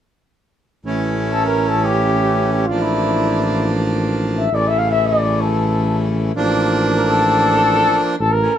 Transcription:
0.85 tuba A1, accordion E3 A3 C#4
1.32 cornet A4
1.46 cornet A#4
1.68 cornet A4
1.84 cornet G4
2.53 cornet G4
2.66 tuba A1, accordion F3 A#3 D4, cornet F4
2.81 cornet E4
4.38 cornet E5
4.52 tuba A1, accordion C#3 E3 A3, cornet D5
4.68 cornet E5
4.78 cornet F5
4.92 cornet E5
5.07 cornet D5
5.41 cornet A4
6.35 tuba A1, accordion F3 A#3 D4
6.97 cornet A#4
7.07 cornet A4
8.20 tuba A1, cornet A4
8.32 cornet A#4
8.41 accordion E3 A3 C#4

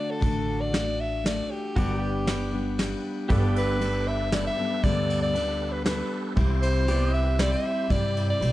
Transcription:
Already playing: steel-string acoustic guitar D3 A3 D4 F#4 A4, pedal steel guitar F#4 A4 D5, soprano saxophone D5
0.11 soprano saxophone A4
0.20 upright bass A1, steel-string acoustic guitar D3 A3 D4 F#4 A4, kick, ride
0.61 soprano saxophone D5
0.72 steel-string acoustic guitar A3 D4 F#4 A4, snare, ride
1.00 soprano saxophone E5
1.24 steel-string acoustic guitar A3 D4 F#4 A4, soprano saxophone D5, snare, ride
1.51 soprano saxophone G4
1.76 upright bass G1, steel-string acoustic guitar G2 D3 G3 B3 D4 G4, pedal steel guitar F#4 A4 D5, kick, ride
1.96 pedal steel guitar G4
2.02 pedal steel guitar B4
2.26 steel-string acoustic guitar G3 B3 D4 G4, snare, ride
2.51 steel-string acoustic guitar G3 B3 D4 G4
2.78 steel-string acoustic guitar G3 B3 D4 G4, snare, ride
3.29 upright bass G1, steel-string acoustic guitar G2 D3 G3 B3 D4 A4, pedal steel guitar G4 B4 D5, tonewheel organ G4 A4 B4, kick, ride
3.56 soprano saxophone B4, ride
3.80 steel-string acoustic guitar G3 B3 D4 A4, tonewheel organ G4 A4 B4, ride
4.07 soprano saxophone E5
4.32 steel-string acoustic guitar G3 B3 D4 A4, tonewheel organ G4 A4 B4, soprano saxophone D5, snare, ride
4.47 soprano saxophone E5
4.57 steel-string acoustic guitar G3 B3 D4 A4
4.83 upright bass D2, steel-string acoustic guitar G2 D3 G3 B3 D4 A4, tonewheel organ G4 A4 D5, soprano saxophone D5, kick, ride
5.10 ride
5.22 soprano saxophone D5
5.33 steel-string acoustic guitar G3 B3 D4, tonewheel organ G4 A4 B4, ride
5.37 steel-string acoustic guitar A4
5.72 soprano saxophone B4
5.84 steel-string acoustic guitar G3 B3 D4 A4, tonewheel organ G4 A4 B4, soprano saxophone B4, snare, ride
6.36 upright bass C2, steel-string acoustic guitar C3 G3 C4 E4 G4, tonewheel organ E4 G4 C5, kick, ride
6.62 soprano saxophone C5, ride
6.88 steel-string acoustic guitar G3 C4 E4 G4, pedal steel guitar B3 G4 D5, tonewheel organ E4 G4 B4, ride
7.10 pedal steel guitar C4, soprano saxophone E5
7.16 pedal steel guitar E5
7.38 steel-string acoustic guitar G3 C4 E4 G4, tonewheel organ E4 G4 C5, soprano saxophone D5, snare, ride
7.52 soprano saxophone E5
7.89 upright bass G2, steel-string acoustic guitar C3 G3 C4 E4 G4, tonewheel organ E4 G4 D5, soprano saxophone D5, kick, ride
8.17 ride
8.30 soprano saxophone D5
8.40 upright bass B1, steel-string acoustic guitar G3 C4 E4 G4, tonewheel organ E4 G4 C5, ride

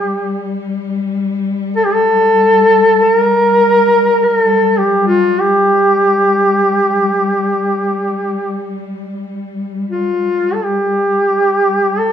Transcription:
Already playing: cello section G3, duduk G4
1.76 duduk A4
1.85 duduk G4
1.94 duduk A4
3.03 duduk A4
3.16 duduk A#4
4.24 duduk A#4
4.37 duduk A4
4.78 duduk G4
5.08 duduk F4
5.40 duduk G4
9.91 duduk F4
10.54 duduk A4
10.64 duduk G4
11.99 duduk A4

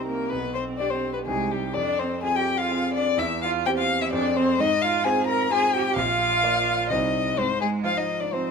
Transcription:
Already playing: grand piano C2 C4 D#4 G4
0.06 cello A#3, violin A#4
0.29 grand piano B1, cello B3, violin B4
0.55 cello C4, violin C5
0.78 cello D4, grand piano D4 G4, violin D5
0.90 cello C4, violin C5
1.13 cello B3, violin B4
1.26 grand piano C2 C4 D#4 G4, cello G#3, violin G#4
1.51 cello G3, violin G4
1.74 grand piano F2, cello D4, violin D5
1.99 cello C4, violin C5
2.23 grand piano C4 F4 G#4, cello G#4, violin G#5
2.35 cello G4, violin G5
2.58 cello F4, violin F5
2.71 grand piano C4 F4 G#4
2.94 cello D4, violin D5
3.17 grand piano E2, cello E4, violin E5
3.42 cello F4, violin F5
3.65 grand piano C4 G4 C5, cello G4, violin G5
3.77 cello F4, violin F5
4.01 cello E4, violin E5
4.12 grand piano F2 C4 G#4 C5, cello D4, violin D5
4.35 cello C4, violin C5
4.58 grand piano G#2, cello D#4, violin D#5
4.81 cello F4, violin F5
5.04 grand piano C4 F4 C5, cello G#4, violin G#5
5.27 cello A#4, violin A#5
5.50 grand piano C4 F4 C5, cello G#4, violin G#5
5.75 cello G4, violin G5
5.96 grand piano A#1, cello F4, violin F5
6.43 grand piano A#3 F4 D5
6.90 grand piano C2 G3 C4 C5, cello D#4, violin D#5
7.37 grand piano G#2, cello C4, violin C5
7.60 cello G#3, violin G#4
7.84 grand piano F3 D#4 C5, cello F4, violin F5
7.96 cello D#4, violin D#5
8.20 cello D4, violin D5
8.32 grand piano F3 D#4 C5, cello C4, violin C5

